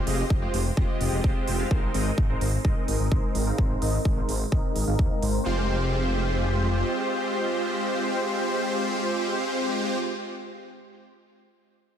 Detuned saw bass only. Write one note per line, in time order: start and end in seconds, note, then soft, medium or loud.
0.07 0.23 F1 loud
0.30 0.47 F1 loud
0.54 0.70 F1 medium
0.77 0.85 F1 medium
1.01 1.09 F1 medium
1.12 1.20 F1 loud
1.24 1.32 F1 loud
1.48 1.64 F1 medium
1.71 1.87 G#1 loud
1.94 2.11 G#1 loud
2.18 2.34 G#1 loud
2.41 2.58 G#1 medium
2.65 2.73 G#1 medium
2.88 2.96 G#1 medium
3.00 3.08 G#1 loud
3.12 3.20 G#1 loud
3.35 3.51 G#1 medium
3.58 3.75 G#1 loud
3.82 3.98 G#1 loud
4.05 4.22 G#1 medium
4.29 4.45 G#1 medium
4.52 4.60 G#1 medium
4.76 4.84 G#1 medium
4.87 4.95 G#1 loud
4.99 5.07 D#2 medium
5.22 5.39 G#1 medium
5.46 6.83 F1 medium